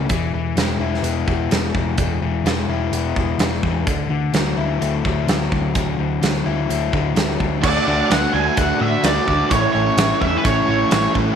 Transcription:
Already playing: C#2 A3 C#4 E4
0.09 E1 E3, kick, closed hi-hat
0.33 E1 E3
0.55 E1 G#3, snare, closed hi-hat
0.79 E1 E4
0.94 snare
1.02 E1 B3, closed hi-hat
1.27 E1 E3, kick
1.50 E1 G#3, snare, closed hi-hat
1.75 E1 E3, kick
1.98 E1 E3, kick, closed hi-hat
2.21 E1 E3
2.44 E1 G#3, snare, closed hi-hat
2.68 E1 E4
2.92 E1 B3, closed hi-hat
3.16 E1 E3, kick
3.38 E1 G#3, snare, closed hi-hat
3.53 snare
3.63 E2 E3, kick
3.87 D2 D3, kick, closed hi-hat
4.09 D2 D3
4.33 D2 F#3, snare, closed hi-hat
4.57 D2 E4
4.81 D2 A3, closed hi-hat
5.05 D2 D3, kick
5.27 D2 F#3, snare, closed hi-hat
5.52 D2 D3, kick
5.75 D2 D3, kick, closed hi-hat
5.98 D2 D3
6.22 D2 F#3, snare, closed hi-hat
6.46 D2 E4
6.69 D2 A3, closed hi-hat
6.93 D2 D3, kick
7.16 D2 F#3, snare, closed hi-hat
7.40 D2 D3, kick
7.63 D2 D3 A3 D4 F#4 A4 D5, kick, crash
7.87 D2 D3 A3 D4 F#4
8.10 D2 D3 A3 D4 F#4 F#5, snare, closed hi-hat
8.33 D2 D3 A3 D4 F#4 G#5
8.57 D2 D3 A3 D4 F#4 F#5, kick, closed hi-hat
8.80 A2 D3 A3 D4 F#4 E5
9.03 D2 D3 A3 D4 F#4 D5, snare, closed hi-hat
9.28 D2 D3 A3 D4 F#4, kick
9.50 A1 A2 E3 A3 C#4 E4 A4 C#5, kick, closed hi-hat
9.73 A1 A2 E3 A3 C#4 E4 C#5
9.97 A1 A2 E3 A3 C#4 E4, snare, closed hi-hat
10.21 E2 A2 E3 A3 C#4 E4 E5, kick
10.37 B4
10.45 A1 A2 E3 A3 C#4 E4 C#5, kick, closed hi-hat
10.68 A1 A2 E3 A3 C#4 E4
10.91 A1 A2 E3 A3 C#4 E4, snare, closed hi-hat
11.14 A1 A2 E3 A3 C#4 E4, kick

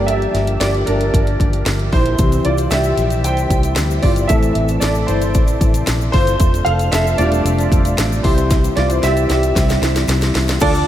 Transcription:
Already playing: G1 D3 F3 G3 A#3 G4 A4 D5
0.07 G4 E5, closed hi-hat
0.22 closed hi-hat
0.34 G1, snare, closed hi-hat
0.47 closed hi-hat
0.60 G1 G4 D5, snare, closed hi-hat
0.74 closed hi-hat
0.86 G1 D4 A#4, closed hi-hat
1.01 closed hi-hat
1.14 G1, kick, closed hi-hat
1.27 closed hi-hat
1.40 G1, kick, closed hi-hat
1.53 closed hi-hat
1.66 G1, snare, closed hi-hat
1.79 closed hi-hat
1.92 A#1 E4 C5, kick, open hi-hat
2.06 closed hi-hat
2.18 C2 C3 E3 G3 C4 E4, kick, closed hi-hat, shaker
2.32 closed hi-hat, shaker
2.45 C2 F4 D5, closed hi-hat
2.58 closed hi-hat, shaker
2.71 C2 G4 E5, snare, closed hi-hat, shaker
2.84 shaker
2.97 A#1, closed hi-hat, shaker
3.10 closed hi-hat, shaker
3.24 C2 C5 G5, closed hi-hat, shaker
3.37 closed hi-hat, shaker
3.50 C2, kick, closed hi-hat, shaker
3.63 closed hi-hat, shaker
3.76 D2, snare, closed hi-hat, shaker
3.91 shaker
4.02 G1 F4 D5, kick, open hi-hat
4.16 closed hi-hat, shaker
4.28 A1 C3 E3 A3 C4 A4 E5, kick, closed hi-hat, shaker
4.43 closed hi-hat, shaker
4.55 A1, closed hi-hat
4.68 closed hi-hat, shaker
4.80 A1 A4 D5, snare, closed hi-hat, shaker
4.95 shaker
5.07 G1 E4 C5, closed hi-hat, shaker
5.22 closed hi-hat, shaker
5.34 A1, kick, closed hi-hat, shaker
5.48 closed hi-hat, shaker
5.61 A1, kick, closed hi-hat, shaker
5.74 closed hi-hat, shaker
5.87 A#1, snare, closed hi-hat, shaker
6.01 shaker
6.12 G1 F4 C5, kick, open hi-hat
6.27 closed hi-hat, shaker
6.40 F1 F3 A3 D4, kick, closed hi-hat, shaker
6.54 closed hi-hat, shaker
6.65 F1 A4 F5, closed hi-hat
6.79 closed hi-hat, shaker
6.92 F1 A4 E5, snare, closed hi-hat, shaker
7.07 shaker
7.18 E1 G3 A3 D4 F4 D5, closed hi-hat, shaker
7.32 closed hi-hat, shaker
7.45 F1, closed hi-hat, shaker
7.59 closed hi-hat, shaker
7.72 F1, kick, closed hi-hat, shaker
7.85 closed hi-hat, shaker
7.98 A1, snare, closed hi-hat, shaker
8.12 shaker
8.23 C2 E3 G3 C4 E4 C5, kick, open hi-hat
8.38 closed hi-hat, shaker
8.50 kick, snare, closed hi-hat, shaker
8.64 closed hi-hat, shaker
8.76 C2 F4 D5, snare, closed hi-hat
8.89 E4 C5, closed hi-hat, shaker
9.03 C2 G4 E5, snare, closed hi-hat, shaker
9.17 closed hi-hat, shaker
9.30 C2 G4 E5, snare, closed hi-hat, shaker
9.43 closed hi-hat, shaker
9.56 C2 G3 C4 E4, kick, snare, closed hi-hat, shaker
9.69 snare, closed hi-hat, shaker
9.82 C2, snare, closed hi-hat, shaker
9.96 snare, closed hi-hat, shaker
10.08 C2, snare, closed hi-hat, shaker
10.21 snare, closed hi-hat, shaker
10.35 C2, snare, open hi-hat
10.48 snare, closed hi-hat, shaker
10.60 D2 D3 F3 D4 F4 A4 D5, kick, closed hi-hat, crash, shaker
10.75 shaker

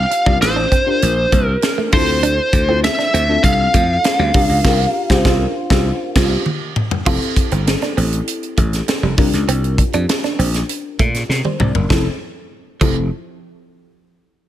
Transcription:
Already playing: D4 F4 G4 A#4 F5
0.11 muted clean electric guitar stroke, closed hi-hat
0.26 C2 D4 F4 G4 A#4, kick
0.42 A1 C5, muted clean electric guitar stroke, snare, closed hi-hat
0.56 D4
0.72 C4, kick, closed hi-hat
0.86 D4 F4 G4 A#4
1.02 A#1, closed hi-hat
1.32 C2 A#3, kick, closed hi-hat
1.46 A#4
1.62 muted clean electric guitar stroke, snare, closed hi-hat
1.78 A3
1.92 D2 A3 C4 E4 F4 A4 C5, kick, open hi-hat
2.23 D4, closed hi-hat
2.53 D2, muted clean electric guitar stroke, kick, closed hi-hat
2.68 C4 E4 F4 A4
2.84 E5, muted clean electric guitar stroke, snare, closed hi-hat
2.99 D4, snare
3.14 D2 C4, closed hi-hat
3.28 C4 D4 F4 A4
3.44 C2 F5, kick, closed hi-hat
3.74 F2 A3, kick, closed hi-hat
4.04 muted clean electric guitar stroke, snare, closed hi-hat
4.19 D2 G3
4.34 C2 G3 D4 F4 G4 A#4, kick, open hi-hat
4.49 C#2
4.64 C2 F4 G4 A#4, kick, snare, crash
5.10 C2 F4 G4 C5, kick, snare
5.25 C2 F4 G4 C5, kick, snare
5.70 C2 F4 G4, kick, snare
6.15 C2 F4 G4, kick, snare, crash
6.46 high tom
6.76 mid tom
6.91 floor tom
7.06 F1 C4 E4 F4 G4 A4, kick, crash
7.22 closed hi-hat
7.36 muted clean electric guitar stroke, kick, closed hi-hat
7.51 G1 C4, closed hi-hat
7.67 muted clean electric guitar stroke, snare, closed hi-hat
7.81 D4, snare, closed hi-hat
7.97 A1 C4, open hi-hat
8.13 closed hi-hat
8.27 closed hi-hat
8.43 closed hi-hat
8.57 A1 A3, kick, closed hi-hat
8.73 snare, closed hi-hat
8.88 muted clean electric guitar stroke, snare, closed hi-hat
9.03 F1 G3
9.17 C2 G3 D4 F4 G4 A#4, kick, open hi-hat
9.33 C#2, snare, closed hi-hat
9.48 C2 C4, closed hi-hat
9.64 closed hi-hat
9.78 muted clean electric guitar stroke, kick, closed hi-hat
9.93 F2 D4, closed hi-hat
10.09 muted clean electric guitar stroke, snare, closed hi-hat
10.23 D4, snare, closed hi-hat
10.39 A#1 C4, open hi-hat
10.54 snare, closed hi-hat
10.69 closed hi-hat
10.99 A#2 A3, kick, closed hi-hat
11.14 snare, closed hi-hat
11.29 C3 A#4, muted clean electric guitar stroke, snare
11.45 G3 C5, high tom
11.60 C2 G3 D5, mid tom
11.75 F#1 A#4, floor tom
11.90 F1 F3 C4 E4 G4 A4, kick, snare
12.81 F1 F3 C4 E4 G4 A4, kick, crash

